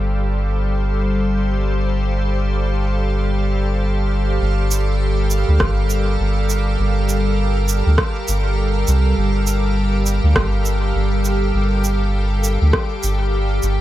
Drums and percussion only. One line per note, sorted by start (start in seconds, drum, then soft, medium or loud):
4.71 shaker medium
5.30 shaker medium
5.60 kick loud
5.60 cross-stick medium
5.90 shaker medium
6.49 shaker medium
7.09 shaker medium
7.68 shaker medium
7.98 kick loud
7.98 cross-stick medium
8.28 shaker medium
8.87 shaker medium
9.47 shaker medium
10.06 shaker medium
10.36 kick loud
10.36 cross-stick loud
10.65 shaker medium
11.25 shaker medium
11.84 shaker soft
12.44 shaker medium
12.73 kick loud
12.73 cross-stick medium
13.03 shaker medium
13.63 shaker soft